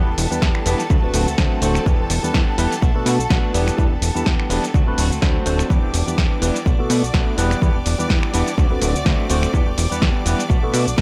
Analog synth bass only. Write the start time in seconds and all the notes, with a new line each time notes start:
0.07 E1
0.18 E1
0.31 E2
0.42 E2
0.66 E1
0.90 D2
1.04 D1
1.14 D1
1.27 D2
1.38 D2
1.62 D1
1.86 E2
2.00 E1
2.10 E1
2.24 E2
2.34 E2
2.58 E1
2.82 B1
2.95 B2
3.06 B2
3.19 B1
3.30 B1
3.54 E1
3.78 E2
3.91 E1
4.02 E1
4.15 E2
4.26 E2
4.50 E1
4.74 D2
4.87 D1
4.98 D1
5.12 D2
5.22 D2
5.46 D1
5.70 E2
5.83 E1
5.94 E1
6.07 E2
6.18 E2
6.42 E1
6.66 B1
6.79 B2
6.90 B2
7.03 B1
7.14 B1
7.38 E1
7.62 E2
7.75 E1
7.86 E1
7.99 E2
8.10 E2
8.34 E1
8.58 D2
8.71 D1
8.82 D1
8.95 D2
9.06 D2
9.30 D1
9.54 E2
9.67 E1
9.78 E1
9.91 E2
10.02 E2
10.26 E1
10.50 B1
10.63 B2
10.74 B2
10.87 B1
10.98 B1